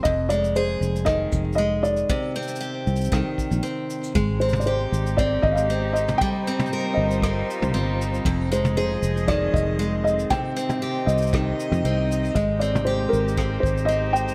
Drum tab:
SH |x-----------x-----x-----x-----------x-----x-----x-----------x--------x--x-----------x-----x-----|x-----------x--x--x--x--x-----------x---x-x-x---x-----------x-----x-----x-----------x-----x-----|x-----------x--x--x--x--------------x-----x-----x-----------------x-----x-----------x-----x-----|x-----------x-----x--x--x--x--------------x-----x-----------x-----x-----x-----------x-----x-----|
SD |------------------------------------------------r-----------------------------------------------|------------------------------------------------r-----------------------------------------------|------------------------------------------------------------------------------------------------|------------------------------------------------r-----------------------------------------------|
T2 |------------------------------------------------------------------------------------------------|------------------------------------------------------------------------------------------------|------------------o-----------------------------------------------------------------------o-----|------------------o-----------------------------------------------o-----------------------------|
BD |o-----------------------------------------------o-----------o-----------------------------------|o-----------------------------------------------o-----------o-----------------------------------|o-----------------------------------------------o-----------o-----------------------------------|o-----------------------------------------------o-----------------------------------------------|

SH |x-----------x-----x-----x-----------x-----x-----x-----------x-----------x-----------x-----x-----|x-----------x-----x-----x-----------x---x-x-x---x-----------x-----x-----x-----------x-----x-----|x-----------x-----x-----x-----------x-----x-----x-----------x-----x-----x-----------x-----x-----|
SD |------------------------------------------------r-----------------------------------------------|------------------------------------------------r-----------------------------------------------|------------------------------------------------r-----------------------------------------------|
T2 |------------------o-----------------------------------------------------------------------------|o-----------------o-----------------------------------------------o-----------------------------|------------------o-----------------------------------------------------------------------------|
BD |o-----------------------------------------------o-----------o-----------------------------------|o-----------------------------------------------o-----------------------------------------------|o-----------------------------------------------o-----------o-----------------------------------|